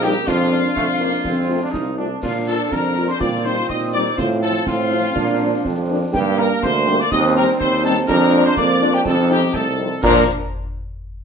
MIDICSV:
0, 0, Header, 1, 8, 480
1, 0, Start_track
1, 0, Key_signature, -2, "major"
1, 0, Tempo, 488202
1, 269, Time_signature, 2, 2, 24, 8
1, 11052, End_track
2, 0, Start_track
2, 0, Title_t, "Piccolo"
2, 0, Program_c, 0, 72
2, 34, Note_on_c, 0, 79, 105
2, 93, Note_off_c, 0, 79, 0
2, 265, Note_on_c, 0, 77, 107
2, 1910, Note_off_c, 0, 77, 0
2, 2191, Note_on_c, 0, 77, 95
2, 2415, Note_off_c, 0, 77, 0
2, 2436, Note_on_c, 0, 81, 94
2, 2495, Note_off_c, 0, 81, 0
2, 2674, Note_on_c, 0, 82, 80
2, 3008, Note_off_c, 0, 82, 0
2, 3023, Note_on_c, 0, 84, 101
2, 3079, Note_off_c, 0, 84, 0
2, 3146, Note_on_c, 0, 86, 98
2, 3205, Note_off_c, 0, 86, 0
2, 3394, Note_on_c, 0, 84, 91
2, 3641, Note_on_c, 0, 87, 102
2, 3656, Note_off_c, 0, 84, 0
2, 3864, Note_off_c, 0, 87, 0
2, 3870, Note_on_c, 0, 86, 98
2, 3929, Note_off_c, 0, 86, 0
2, 4115, Note_on_c, 0, 84, 99
2, 4174, Note_off_c, 0, 84, 0
2, 4359, Note_on_c, 0, 81, 93
2, 4601, Note_on_c, 0, 77, 93
2, 4616, Note_off_c, 0, 81, 0
2, 5797, Note_off_c, 0, 77, 0
2, 6026, Note_on_c, 0, 79, 113
2, 6085, Note_off_c, 0, 79, 0
2, 6268, Note_on_c, 0, 82, 107
2, 6327, Note_off_c, 0, 82, 0
2, 6519, Note_on_c, 0, 84, 123
2, 6878, Note_on_c, 0, 86, 116
2, 6893, Note_off_c, 0, 84, 0
2, 6996, Note_on_c, 0, 87, 126
2, 7011, Note_off_c, 0, 86, 0
2, 7234, Note_off_c, 0, 87, 0
2, 7239, Note_on_c, 0, 82, 122
2, 7298, Note_off_c, 0, 82, 0
2, 7478, Note_on_c, 0, 84, 106
2, 7537, Note_off_c, 0, 84, 0
2, 7718, Note_on_c, 0, 81, 120
2, 7938, Note_off_c, 0, 81, 0
2, 7953, Note_on_c, 0, 82, 107
2, 8311, Note_on_c, 0, 84, 127
2, 8326, Note_off_c, 0, 82, 0
2, 8426, Note_off_c, 0, 84, 0
2, 8432, Note_on_c, 0, 86, 125
2, 8788, Note_on_c, 0, 79, 104
2, 8803, Note_off_c, 0, 86, 0
2, 8894, Note_on_c, 0, 81, 104
2, 8908, Note_off_c, 0, 79, 0
2, 9141, Note_off_c, 0, 81, 0
2, 9146, Note_on_c, 0, 79, 99
2, 9205, Note_off_c, 0, 79, 0
2, 9370, Note_on_c, 0, 81, 96
2, 9824, Note_off_c, 0, 81, 0
2, 9862, Note_on_c, 0, 82, 114
2, 10132, Note_off_c, 0, 82, 0
2, 11052, End_track
3, 0, Start_track
3, 0, Title_t, "Trumpet section"
3, 0, Program_c, 1, 61
3, 32, Note_on_c, 1, 67, 127
3, 270, Note_on_c, 1, 65, 127
3, 271, Note_off_c, 1, 67, 0
3, 1952, Note_off_c, 1, 65, 0
3, 2183, Note_on_c, 1, 65, 99
3, 2293, Note_off_c, 1, 65, 0
3, 2436, Note_on_c, 1, 69, 116
3, 2657, Note_off_c, 1, 69, 0
3, 2684, Note_on_c, 1, 70, 106
3, 3038, Note_off_c, 1, 70, 0
3, 3046, Note_on_c, 1, 72, 112
3, 3147, Note_on_c, 1, 74, 103
3, 3151, Note_off_c, 1, 72, 0
3, 3373, Note_off_c, 1, 74, 0
3, 3383, Note_on_c, 1, 72, 115
3, 3628, Note_off_c, 1, 72, 0
3, 3629, Note_on_c, 1, 75, 99
3, 3738, Note_off_c, 1, 75, 0
3, 3867, Note_on_c, 1, 74, 123
3, 4093, Note_off_c, 1, 74, 0
3, 4105, Note_on_c, 1, 72, 104
3, 4215, Note_off_c, 1, 72, 0
3, 4346, Note_on_c, 1, 69, 118
3, 4573, Note_off_c, 1, 69, 0
3, 4587, Note_on_c, 1, 65, 122
3, 5751, Note_off_c, 1, 65, 0
3, 6037, Note_on_c, 1, 67, 121
3, 6258, Note_off_c, 1, 67, 0
3, 6273, Note_on_c, 1, 70, 127
3, 6513, Note_off_c, 1, 70, 0
3, 6514, Note_on_c, 1, 72, 127
3, 6848, Note_off_c, 1, 72, 0
3, 6894, Note_on_c, 1, 74, 127
3, 6943, Note_off_c, 1, 74, 0
3, 6999, Note_on_c, 1, 75, 126
3, 7105, Note_off_c, 1, 75, 0
3, 7243, Note_on_c, 1, 70, 127
3, 7348, Note_off_c, 1, 70, 0
3, 7475, Note_on_c, 1, 72, 125
3, 7696, Note_off_c, 1, 72, 0
3, 7710, Note_on_c, 1, 69, 127
3, 7818, Note_off_c, 1, 69, 0
3, 7944, Note_on_c, 1, 70, 127
3, 8281, Note_off_c, 1, 70, 0
3, 8319, Note_on_c, 1, 72, 127
3, 8426, Note_off_c, 1, 72, 0
3, 8428, Note_on_c, 1, 74, 127
3, 8764, Note_off_c, 1, 74, 0
3, 8798, Note_on_c, 1, 67, 123
3, 8850, Note_off_c, 1, 67, 0
3, 8917, Note_on_c, 1, 69, 117
3, 9136, Note_off_c, 1, 69, 0
3, 9154, Note_on_c, 1, 67, 127
3, 9374, Note_off_c, 1, 67, 0
3, 9386, Note_on_c, 1, 69, 116
3, 9855, Note_on_c, 1, 70, 118
3, 9867, Note_off_c, 1, 69, 0
3, 10060, Note_off_c, 1, 70, 0
3, 11052, End_track
4, 0, Start_track
4, 0, Title_t, "Euphonium"
4, 0, Program_c, 2, 58
4, 0, Note_on_c, 2, 58, 115
4, 268, Note_off_c, 2, 58, 0
4, 273, Note_on_c, 2, 62, 101
4, 1914, Note_off_c, 2, 62, 0
4, 2182, Note_on_c, 2, 62, 100
4, 3108, Note_off_c, 2, 62, 0
4, 3145, Note_on_c, 2, 65, 95
4, 3631, Note_on_c, 2, 63, 93
4, 3646, Note_off_c, 2, 65, 0
4, 4106, Note_off_c, 2, 63, 0
4, 4112, Note_on_c, 2, 65, 105
4, 4559, Note_off_c, 2, 65, 0
4, 4587, Note_on_c, 2, 60, 108
4, 5036, Note_off_c, 2, 60, 0
4, 5066, Note_on_c, 2, 62, 113
4, 5561, Note_on_c, 2, 60, 123
4, 5575, Note_off_c, 2, 62, 0
4, 6028, Note_off_c, 2, 60, 0
4, 6034, Note_on_c, 2, 58, 112
4, 6953, Note_off_c, 2, 58, 0
4, 6992, Note_on_c, 2, 60, 127
4, 7912, Note_off_c, 2, 60, 0
4, 7952, Note_on_c, 2, 62, 127
4, 8397, Note_off_c, 2, 62, 0
4, 8434, Note_on_c, 2, 58, 123
4, 8900, Note_on_c, 2, 60, 112
4, 8915, Note_off_c, 2, 58, 0
4, 9369, Note_off_c, 2, 60, 0
4, 9375, Note_on_c, 2, 57, 94
4, 9486, Note_off_c, 2, 57, 0
4, 11052, End_track
5, 0, Start_track
5, 0, Title_t, "French horn section"
5, 0, Program_c, 3, 60
5, 35, Note_on_c, 3, 58, 90
5, 36, Note_on_c, 3, 63, 83
5, 37, Note_on_c, 3, 55, 83
5, 120, Note_off_c, 3, 58, 0
5, 121, Note_off_c, 3, 63, 0
5, 122, Note_off_c, 3, 55, 0
5, 514, Note_on_c, 3, 58, 74
5, 515, Note_on_c, 3, 62, 83
5, 599, Note_off_c, 3, 58, 0
5, 600, Note_off_c, 3, 62, 0
5, 979, Note_on_c, 3, 58, 81
5, 984, Note_on_c, 3, 62, 80
5, 986, Note_off_c, 3, 58, 0
5, 986, Note_on_c, 3, 58, 69
5, 1072, Note_off_c, 3, 62, 0
5, 1074, Note_off_c, 3, 58, 0
5, 1466, Note_on_c, 3, 60, 66
5, 1468, Note_on_c, 3, 65, 71
5, 1470, Note_on_c, 3, 57, 73
5, 1554, Note_off_c, 3, 60, 0
5, 1555, Note_off_c, 3, 65, 0
5, 1557, Note_off_c, 3, 57, 0
5, 1941, Note_on_c, 3, 60, 64
5, 1942, Note_on_c, 3, 65, 67
5, 1945, Note_on_c, 3, 57, 67
5, 2029, Note_off_c, 3, 60, 0
5, 2030, Note_off_c, 3, 65, 0
5, 2033, Note_off_c, 3, 57, 0
5, 2435, Note_on_c, 3, 58, 73
5, 2435, Note_on_c, 3, 62, 65
5, 2436, Note_on_c, 3, 65, 74
5, 2520, Note_off_c, 3, 62, 0
5, 2521, Note_off_c, 3, 58, 0
5, 2521, Note_off_c, 3, 65, 0
5, 2916, Note_on_c, 3, 62, 75
5, 2918, Note_on_c, 3, 58, 71
5, 2920, Note_on_c, 3, 65, 76
5, 3002, Note_off_c, 3, 62, 0
5, 3003, Note_off_c, 3, 58, 0
5, 3005, Note_off_c, 3, 65, 0
5, 3391, Note_on_c, 3, 55, 68
5, 3392, Note_on_c, 3, 60, 71
5, 3392, Note_on_c, 3, 63, 66
5, 3478, Note_off_c, 3, 55, 0
5, 3478, Note_off_c, 3, 63, 0
5, 3479, Note_off_c, 3, 60, 0
5, 3867, Note_on_c, 3, 55, 73
5, 3869, Note_on_c, 3, 63, 84
5, 3870, Note_on_c, 3, 60, 84
5, 3955, Note_off_c, 3, 55, 0
5, 3957, Note_off_c, 3, 60, 0
5, 3957, Note_off_c, 3, 63, 0
5, 4355, Note_on_c, 3, 60, 74
5, 4357, Note_on_c, 3, 53, 76
5, 4357, Note_on_c, 3, 65, 80
5, 4441, Note_off_c, 3, 60, 0
5, 4442, Note_off_c, 3, 53, 0
5, 4442, Note_off_c, 3, 65, 0
5, 4837, Note_on_c, 3, 53, 86
5, 4839, Note_on_c, 3, 65, 85
5, 4843, Note_on_c, 3, 60, 77
5, 4923, Note_off_c, 3, 53, 0
5, 4924, Note_off_c, 3, 65, 0
5, 4927, Note_off_c, 3, 60, 0
5, 5309, Note_on_c, 3, 53, 84
5, 5311, Note_on_c, 3, 58, 72
5, 5313, Note_on_c, 3, 62, 79
5, 5396, Note_off_c, 3, 53, 0
5, 5398, Note_off_c, 3, 58, 0
5, 5399, Note_off_c, 3, 62, 0
5, 5796, Note_on_c, 3, 58, 85
5, 5798, Note_on_c, 3, 62, 93
5, 5800, Note_on_c, 3, 53, 82
5, 5881, Note_off_c, 3, 58, 0
5, 5883, Note_off_c, 3, 62, 0
5, 5885, Note_off_c, 3, 53, 0
5, 6267, Note_on_c, 3, 58, 90
5, 6268, Note_on_c, 3, 62, 85
5, 6270, Note_on_c, 3, 55, 92
5, 6355, Note_off_c, 3, 58, 0
5, 6356, Note_off_c, 3, 62, 0
5, 6357, Note_off_c, 3, 55, 0
5, 6742, Note_on_c, 3, 62, 89
5, 6745, Note_on_c, 3, 55, 94
5, 6746, Note_on_c, 3, 58, 95
5, 6830, Note_off_c, 3, 62, 0
5, 6833, Note_off_c, 3, 55, 0
5, 6834, Note_off_c, 3, 58, 0
5, 7225, Note_on_c, 3, 60, 92
5, 7226, Note_on_c, 3, 55, 92
5, 7230, Note_on_c, 3, 63, 88
5, 7313, Note_off_c, 3, 55, 0
5, 7313, Note_off_c, 3, 60, 0
5, 7316, Note_off_c, 3, 63, 0
5, 7702, Note_on_c, 3, 60, 102
5, 7703, Note_on_c, 3, 55, 91
5, 7703, Note_on_c, 3, 63, 91
5, 7790, Note_off_c, 3, 60, 0
5, 7791, Note_off_c, 3, 55, 0
5, 7791, Note_off_c, 3, 63, 0
5, 8181, Note_on_c, 3, 58, 96
5, 8183, Note_on_c, 3, 53, 90
5, 8185, Note_on_c, 3, 62, 92
5, 8270, Note_off_c, 3, 58, 0
5, 8271, Note_off_c, 3, 53, 0
5, 8272, Note_off_c, 3, 62, 0
5, 8663, Note_on_c, 3, 62, 99
5, 8664, Note_on_c, 3, 53, 91
5, 8665, Note_on_c, 3, 58, 94
5, 8751, Note_off_c, 3, 62, 0
5, 8752, Note_off_c, 3, 53, 0
5, 8752, Note_off_c, 3, 58, 0
5, 9131, Note_on_c, 3, 53, 89
5, 9134, Note_on_c, 3, 63, 91
5, 9136, Note_on_c, 3, 60, 81
5, 9222, Note_off_c, 3, 53, 0
5, 9224, Note_off_c, 3, 63, 0
5, 9225, Note_off_c, 3, 60, 0
5, 9610, Note_on_c, 3, 53, 80
5, 9610, Note_on_c, 3, 60, 81
5, 9610, Note_on_c, 3, 63, 73
5, 9701, Note_off_c, 3, 53, 0
5, 9701, Note_off_c, 3, 60, 0
5, 9701, Note_off_c, 3, 63, 0
5, 9864, Note_on_c, 3, 58, 99
5, 9867, Note_on_c, 3, 53, 112
5, 9869, Note_on_c, 3, 62, 101
5, 10066, Note_off_c, 3, 58, 0
5, 10068, Note_off_c, 3, 53, 0
5, 10069, Note_off_c, 3, 62, 0
5, 11052, End_track
6, 0, Start_track
6, 0, Title_t, "Trombone section"
6, 0, Program_c, 4, 61
6, 0, Note_on_c, 4, 58, 98
6, 0, Note_on_c, 4, 63, 102
6, 224, Note_off_c, 4, 58, 0
6, 227, Note_off_c, 4, 63, 0
6, 259, Note_on_c, 4, 62, 90
6, 263, Note_on_c, 4, 58, 88
6, 603, Note_off_c, 4, 62, 0
6, 613, Note_off_c, 4, 58, 0
6, 734, Note_on_c, 4, 57, 100
6, 846, Note_off_c, 4, 57, 0
6, 980, Note_on_c, 4, 58, 87
6, 1208, Note_off_c, 4, 58, 0
6, 1224, Note_on_c, 4, 60, 101
6, 1588, Note_off_c, 4, 60, 0
6, 1591, Note_on_c, 4, 62, 96
6, 1678, Note_on_c, 4, 63, 99
6, 1703, Note_off_c, 4, 62, 0
6, 1917, Note_off_c, 4, 63, 0
6, 1933, Note_on_c, 4, 62, 93
6, 2165, Note_off_c, 4, 62, 0
6, 2171, Note_on_c, 4, 53, 80
6, 2178, Note_on_c, 4, 62, 85
6, 3103, Note_off_c, 4, 53, 0
6, 3106, Note_off_c, 4, 62, 0
6, 3138, Note_on_c, 4, 60, 86
6, 3141, Note_on_c, 4, 51, 87
6, 4091, Note_on_c, 4, 53, 94
6, 4107, Note_off_c, 4, 51, 0
6, 5045, Note_on_c, 4, 62, 86
6, 5066, Note_off_c, 4, 60, 0
6, 6022, Note_off_c, 4, 53, 0
6, 6027, Note_on_c, 4, 58, 88
6, 6939, Note_off_c, 4, 62, 0
6, 6950, Note_off_c, 4, 58, 0
6, 6996, Note_on_c, 4, 55, 105
6, 7001, Note_on_c, 4, 60, 101
6, 7799, Note_off_c, 4, 55, 0
6, 7799, Note_off_c, 4, 60, 0
6, 7966, Note_on_c, 4, 62, 101
6, 7968, Note_on_c, 4, 53, 108
6, 8878, Note_off_c, 4, 62, 0
6, 8905, Note_on_c, 4, 63, 101
6, 9626, Note_off_c, 4, 63, 0
6, 9637, Note_off_c, 4, 53, 0
6, 9867, Note_on_c, 4, 62, 104
6, 9869, Note_on_c, 4, 53, 103
6, 10068, Note_off_c, 4, 62, 0
6, 10069, Note_off_c, 4, 53, 0
6, 11052, End_track
7, 0, Start_track
7, 0, Title_t, "Tuba"
7, 0, Program_c, 5, 58
7, 0, Note_on_c, 5, 34, 106
7, 145, Note_off_c, 5, 34, 0
7, 266, Note_on_c, 5, 41, 115
7, 668, Note_off_c, 5, 41, 0
7, 749, Note_on_c, 5, 41, 84
7, 1150, Note_off_c, 5, 41, 0
7, 1224, Note_on_c, 5, 41, 101
7, 1628, Note_off_c, 5, 41, 0
7, 1712, Note_on_c, 5, 36, 80
7, 2112, Note_off_c, 5, 36, 0
7, 2192, Note_on_c, 5, 46, 103
7, 2592, Note_off_c, 5, 46, 0
7, 2672, Note_on_c, 5, 41, 92
7, 3072, Note_off_c, 5, 41, 0
7, 3147, Note_on_c, 5, 46, 105
7, 3550, Note_off_c, 5, 46, 0
7, 3631, Note_on_c, 5, 46, 90
7, 4032, Note_off_c, 5, 46, 0
7, 4107, Note_on_c, 5, 45, 109
7, 4510, Note_off_c, 5, 45, 0
7, 4585, Note_on_c, 5, 45, 94
7, 4989, Note_off_c, 5, 45, 0
7, 5065, Note_on_c, 5, 46, 114
7, 5469, Note_off_c, 5, 46, 0
7, 5546, Note_on_c, 5, 41, 100
7, 5949, Note_off_c, 5, 41, 0
7, 6025, Note_on_c, 5, 43, 121
7, 6428, Note_off_c, 5, 43, 0
7, 6508, Note_on_c, 5, 38, 103
7, 6910, Note_off_c, 5, 38, 0
7, 6991, Note_on_c, 5, 39, 127
7, 7350, Note_off_c, 5, 39, 0
7, 7470, Note_on_c, 5, 39, 114
7, 7870, Note_off_c, 5, 39, 0
7, 7947, Note_on_c, 5, 41, 127
7, 8348, Note_off_c, 5, 41, 0
7, 8424, Note_on_c, 5, 41, 106
7, 8826, Note_off_c, 5, 41, 0
7, 8898, Note_on_c, 5, 41, 124
7, 9303, Note_off_c, 5, 41, 0
7, 9376, Note_on_c, 5, 36, 99
7, 9781, Note_off_c, 5, 36, 0
7, 9859, Note_on_c, 5, 46, 127
7, 10063, Note_off_c, 5, 46, 0
7, 11052, End_track
8, 0, Start_track
8, 0, Title_t, "Drums"
8, 270, Note_on_c, 9, 35, 92
8, 270, Note_on_c, 9, 38, 90
8, 270, Note_on_c, 9, 49, 38
8, 369, Note_off_c, 9, 35, 0
8, 369, Note_off_c, 9, 38, 0
8, 369, Note_off_c, 9, 49, 0
8, 517, Note_on_c, 9, 38, 57
8, 615, Note_off_c, 9, 38, 0
8, 754, Note_on_c, 9, 35, 80
8, 754, Note_on_c, 9, 38, 88
8, 852, Note_off_c, 9, 35, 0
8, 852, Note_off_c, 9, 38, 0
8, 996, Note_on_c, 9, 38, 56
8, 1095, Note_off_c, 9, 38, 0
8, 1114, Note_on_c, 9, 38, 61
8, 1212, Note_off_c, 9, 38, 0
8, 1225, Note_on_c, 9, 35, 86
8, 1225, Note_on_c, 9, 38, 72
8, 1323, Note_off_c, 9, 35, 0
8, 1323, Note_off_c, 9, 38, 0
8, 1707, Note_on_c, 9, 35, 75
8, 1707, Note_on_c, 9, 38, 77
8, 1806, Note_off_c, 9, 35, 0
8, 1806, Note_off_c, 9, 38, 0
8, 2192, Note_on_c, 9, 35, 90
8, 2192, Note_on_c, 9, 38, 91
8, 2192, Note_on_c, 9, 49, 60
8, 2290, Note_off_c, 9, 35, 0
8, 2290, Note_off_c, 9, 38, 0
8, 2290, Note_off_c, 9, 49, 0
8, 2433, Note_on_c, 9, 38, 53
8, 2532, Note_off_c, 9, 38, 0
8, 2671, Note_on_c, 9, 35, 79
8, 2671, Note_on_c, 9, 38, 78
8, 2769, Note_off_c, 9, 35, 0
8, 2769, Note_off_c, 9, 38, 0
8, 2908, Note_on_c, 9, 38, 60
8, 3006, Note_off_c, 9, 38, 0
8, 3029, Note_on_c, 9, 38, 60
8, 3127, Note_off_c, 9, 38, 0
8, 3153, Note_on_c, 9, 35, 105
8, 3153, Note_on_c, 9, 38, 72
8, 3251, Note_off_c, 9, 35, 0
8, 3251, Note_off_c, 9, 38, 0
8, 3633, Note_on_c, 9, 35, 71
8, 3633, Note_on_c, 9, 38, 64
8, 3731, Note_off_c, 9, 35, 0
8, 3731, Note_off_c, 9, 38, 0
8, 4112, Note_on_c, 9, 35, 102
8, 4112, Note_on_c, 9, 38, 89
8, 4112, Note_on_c, 9, 49, 36
8, 4210, Note_off_c, 9, 35, 0
8, 4210, Note_off_c, 9, 38, 0
8, 4210, Note_off_c, 9, 49, 0
8, 4350, Note_on_c, 9, 38, 61
8, 4448, Note_off_c, 9, 38, 0
8, 4588, Note_on_c, 9, 35, 86
8, 4588, Note_on_c, 9, 38, 81
8, 4686, Note_off_c, 9, 35, 0
8, 4686, Note_off_c, 9, 38, 0
8, 4831, Note_on_c, 9, 38, 61
8, 4930, Note_off_c, 9, 38, 0
8, 4952, Note_on_c, 9, 38, 66
8, 5050, Note_off_c, 9, 38, 0
8, 5071, Note_on_c, 9, 35, 93
8, 5071, Note_on_c, 9, 38, 76
8, 5169, Note_off_c, 9, 35, 0
8, 5169, Note_off_c, 9, 38, 0
8, 5557, Note_on_c, 9, 35, 80
8, 5557, Note_on_c, 9, 38, 67
8, 5655, Note_off_c, 9, 35, 0
8, 5655, Note_off_c, 9, 38, 0
8, 6036, Note_on_c, 9, 35, 103
8, 6036, Note_on_c, 9, 38, 92
8, 6036, Note_on_c, 9, 49, 39
8, 6135, Note_off_c, 9, 35, 0
8, 6135, Note_off_c, 9, 38, 0
8, 6135, Note_off_c, 9, 49, 0
8, 6278, Note_on_c, 9, 38, 63
8, 6376, Note_off_c, 9, 38, 0
8, 6518, Note_on_c, 9, 35, 92
8, 6518, Note_on_c, 9, 38, 92
8, 6616, Note_off_c, 9, 35, 0
8, 6616, Note_off_c, 9, 38, 0
8, 6758, Note_on_c, 9, 38, 70
8, 6856, Note_off_c, 9, 38, 0
8, 6879, Note_on_c, 9, 38, 58
8, 6977, Note_off_c, 9, 38, 0
8, 6998, Note_on_c, 9, 35, 98
8, 6998, Note_on_c, 9, 38, 76
8, 7096, Note_off_c, 9, 35, 0
8, 7096, Note_off_c, 9, 38, 0
8, 7478, Note_on_c, 9, 35, 81
8, 7478, Note_on_c, 9, 38, 64
8, 7576, Note_off_c, 9, 35, 0
8, 7576, Note_off_c, 9, 38, 0
8, 7954, Note_on_c, 9, 35, 96
8, 7954, Note_on_c, 9, 38, 101
8, 7954, Note_on_c, 9, 49, 43
8, 8052, Note_off_c, 9, 35, 0
8, 8052, Note_off_c, 9, 38, 0
8, 8052, Note_off_c, 9, 49, 0
8, 8191, Note_on_c, 9, 38, 55
8, 8289, Note_off_c, 9, 38, 0
8, 8426, Note_on_c, 9, 35, 84
8, 8426, Note_on_c, 9, 38, 90
8, 8524, Note_off_c, 9, 35, 0
8, 8524, Note_off_c, 9, 38, 0
8, 8669, Note_on_c, 9, 38, 65
8, 8768, Note_off_c, 9, 38, 0
8, 8786, Note_on_c, 9, 38, 57
8, 8885, Note_off_c, 9, 38, 0
8, 8903, Note_on_c, 9, 35, 95
8, 8903, Note_on_c, 9, 38, 78
8, 9001, Note_off_c, 9, 35, 0
8, 9001, Note_off_c, 9, 38, 0
8, 9378, Note_on_c, 9, 35, 79
8, 9378, Note_on_c, 9, 38, 80
8, 9476, Note_off_c, 9, 35, 0
8, 9476, Note_off_c, 9, 38, 0
8, 9860, Note_on_c, 9, 35, 101
8, 9860, Note_on_c, 9, 38, 115
8, 9860, Note_on_c, 9, 49, 98
8, 9958, Note_off_c, 9, 35, 0
8, 9958, Note_off_c, 9, 38, 0
8, 9958, Note_off_c, 9, 49, 0
8, 11052, End_track
0, 0, End_of_file